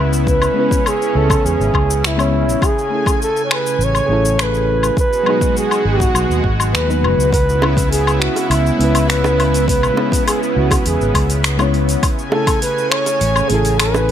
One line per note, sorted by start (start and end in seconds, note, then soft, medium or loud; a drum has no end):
0.00 0.48 C#2 medium
0.00 4.93 C#3 medium
0.00 0.51 G#3 loud
0.00 0.25 B3 medium
0.00 0.52 B3 medium
0.00 0.53 C#4 medium
0.00 0.53 E4 medium
0.00 2.58 E4 medium
0.00 0.12 B4 loud
0.00 0.54 B4 loud
0.13 shaker medium
0.26 2.59 C#4 medium
0.26 0.89 B4 loud
0.26 kick loud
0.26 shaker medium
0.42 low woodblock medium
0.42 shaker soft
0.54 2.13 G#3 loud
0.54 2.14 B3 medium
0.54 2.15 C#4 medium
0.59 2.16 E4 medium
0.59 2.17 B4 loud
0.71 kick loud
0.71 shaker medium
0.86 1.19 G#4 medium
0.86 low woodblock medium
0.86 shaker medium
1.02 shaker soft
1.15 1.35 C#2 medium
1.15 1.47 A4 medium
1.30 kick loud
1.30 low woodblock medium
1.30 shaker medium
1.45 1.55 E2 medium
1.45 2.08 G#4 loud
1.45 shaker medium
1.60 1.69 G#1 medium
1.60 shaker soft
1.74 2.54 C#2 medium
1.74 kick medium
1.74 low woodblock medium
1.90 shaker medium
2.04 2.67 E4 loud
2.04 finger snap medium
2.04 shaker medium
2.17 2.60 G#3 medium
2.17 2.60 B3 medium
2.17 2.60 C#4 medium
2.17 2.61 E4 medium
2.17 2.61 C#5 loud
2.17 low woodblock medium
2.17 shaker soft
2.49 shaker medium
2.62 3.22 G#4 loud
2.62 4.96 G#5 medium
2.62 kick loud
2.62 low woodblock medium
2.62 shaker medium
2.79 shaker soft
2.89 4.05 A3 medium
2.89 4.06 C#4 medium
2.89 4.04 G#4 medium
2.94 4.07 E4 medium
2.94 4.08 A4 medium
3.06 kick loud
3.06 low woodblock medium
3.06 shaker medium
3.22 3.43 A4 loud
3.22 shaker medium
3.37 shaker soft
3.45 3.54 C#5 medium
3.51 3.85 B4 loud
3.51 finger snap medium
3.51 low woodblock medium
3.66 shaker medium
3.79 3.99 A1 loud
3.79 shaker medium
3.84 4.43 C#5 loud
3.95 low woodblock medium
3.95 shaker soft
4.06 4.89 A1 medium
4.06 4.95 A3 medium
4.06 4.96 C#4 medium
4.06 4.94 G#4 loud
4.12 4.97 E4 medium
4.12 4.98 A4 loud
4.25 shaker medium
4.39 4.99 B4 loud
4.39 finger snap medium
4.39 low woodblock medium
4.39 shaker medium
4.54 shaker soft
4.83 low woodblock medium
4.83 shaker medium
4.97 7.30 B2 medium
4.97 7.30 G#3 medium
4.97 7.31 F#4 medium
4.97 5.53 B4 loud
4.97 kick loud
4.97 shaker medium
5.13 shaker soft
5.23 6.83 F#3 loud
5.23 6.84 G#3 medium
5.23 6.85 B3 medium
5.23 low woodblock medium
5.29 6.86 D#4 medium
5.29 6.87 G#4 loud
5.41 kick loud
5.41 shaker medium
5.57 5.85 G#4 medium
5.57 shaker medium
5.71 low woodblock medium
5.71 shaker soft
5.85 6.05 G#1 medium
5.85 6.44 F#4 medium
6.00 kick loud
6.00 shaker medium
6.15 6.25 B1 medium
6.15 low woodblock medium
6.15 shaker medium
6.30 6.39 D#2 medium
6.30 shaker soft
6.44 6.73 G#1 medium
6.44 kick medium
6.60 low woodblock medium
6.60 shaker medium
6.74 7.05 D#2 loud
6.74 7.29 B4 loud
6.74 finger snap medium
6.74 shaker medium
6.87 7.30 F#3 medium
6.87 7.31 G#3 medium
6.87 7.31 B3 medium
6.87 7.31 D#4 medium
6.87 7.32 B4 loud
6.87 shaker soft
7.03 7.13 F#1 medium
7.03 low woodblock medium
7.17 8.27 C#2 medium
7.17 shaker medium
7.33 11.99 C#3 medium
7.33 12.00 B3 medium
7.33 12.00 E4 medium
7.33 7.88 B4 loud
7.33 kick loud
7.33 open hi-hat medium
7.33 shaker medium
7.49 shaker soft
7.60 8.75 G#3 medium
7.60 8.76 B3 medium
7.60 8.77 C#4 medium
7.60 high bongo medium
7.60 low woodblock medium
7.65 8.77 E4 medium
7.65 8.78 B4 medium
7.77 kick loud
7.77 open hi-hat soft
7.77 shaker medium
7.91 8.21 G#4 loud
7.91 open hi-hat medium
7.91 shaker medium
8.07 low woodblock medium
8.07 shaker soft
8.20 8.51 F#4 medium
8.20 finger snap medium
8.36 open hi-hat soft
8.36 high bongo medium
8.36 shaker medium
8.49 8.70 C#2 medium
8.49 9.10 E4 loud
8.49 open hi-hat medium
8.49 low woodblock medium
8.49 shaker medium
8.67 shaker soft
8.77 9.89 C#2 medium
8.77 9.92 G#3 medium
8.77 9.93 B3 medium
8.77 9.94 C#4 medium
8.77 open hi-hat soft
8.82 9.95 E4 medium
8.82 9.96 B4 loud
8.95 open hi-hat soft
8.95 low woodblock medium
8.95 shaker medium
9.09 9.67 B4 loud
9.09 finger snap medium
9.09 open hi-hat medium
9.09 shaker medium
9.24 high bongo medium
9.24 shaker soft
9.40 open hi-hat soft
9.40 low woodblock medium
9.54 open hi-hat soft
9.54 shaker medium
9.68 10.23 B4 loud
9.68 kick loud
9.68 open hi-hat medium
9.68 shaker medium
9.83 low woodblock medium
9.83 shaker soft
9.94 11.54 G#3 loud
9.94 11.55 B3 medium
9.94 11.56 C#4 medium
9.94 high bongo medium
9.99 11.56 E4 medium
9.99 11.57 B4 loud
10.12 kick loud
10.12 open hi-hat soft
10.12 shaker medium
10.27 10.40 G#4 medium
10.27 open hi-hat medium
10.27 low woodblock medium
10.27 shaker medium
10.43 shaker soft
10.56 10.76 C#2 loud
10.56 10.83 F#4 medium
10.71 kick loud
10.71 open hi-hat soft
10.71 high bongo medium
10.71 low woodblock medium
10.71 shaker medium
10.86 10.96 E2 medium
10.86 11.40 G#4 medium
10.86 open hi-hat medium
10.86 shaker medium
11.01 11.10 G#1 medium
11.01 shaker soft
11.14 11.95 C#2 medium
11.14 kick medium
11.14 open hi-hat soft
11.14 low woodblock medium
11.30 open hi-hat soft
11.30 shaker medium
11.44 finger snap medium
11.44 open hi-hat medium
11.44 shaker medium
11.58 12.01 G#3 loud
11.58 12.01 B3 medium
11.58 12.02 C#4 medium
11.58 12.02 E4 medium
11.58 12.02 C#5 loud
11.58 high bongo medium
11.58 low woodblock medium
11.58 shaker soft
11.74 open hi-hat soft
11.89 open hi-hat soft
11.89 shaker medium
12.03 14.12 C#3 medium
12.03 14.12 G#5 medium
12.03 kick loud
12.03 open hi-hat medium
12.03 low woodblock medium
12.03 shaker medium
12.19 shaker soft
12.30 13.46 A3 medium
12.30 13.47 C#4 medium
12.30 13.46 G#4 medium
12.30 12.60 A4 loud
12.30 high bongo medium
12.35 13.48 E4 medium
12.35 13.49 A4 medium
12.47 kick loud
12.47 open hi-hat soft
12.47 low woodblock medium
12.47 shaker medium
12.62 12.92 B4 loud
12.62 open hi-hat medium
12.62 shaker soft
12.78 shaker soft
12.90 13.51 C#5 loud
12.90 finger snap medium
12.90 low woodblock medium
13.06 open hi-hat soft
13.06 high bongo medium
13.06 shaker medium
13.21 13.41 A1 medium
13.21 open hi-hat medium
13.21 shaker medium
13.36 low woodblock medium
13.36 shaker soft
13.48 14.12 A1 medium
13.48 14.12 A3 medium
13.48 14.12 C#4 medium
13.48 14.12 G#4 medium
13.48 13.80 G#4 loud
13.48 open hi-hat medium
13.53 14.12 E4 medium
13.53 14.12 A4 loud
13.65 open hi-hat soft
13.65 shaker medium
13.78 14.12 B4 loud
13.78 finger snap medium
13.78 open hi-hat medium
13.78 low woodblock medium
13.78 shaker medium
13.94 high bongo medium
13.94 shaker soft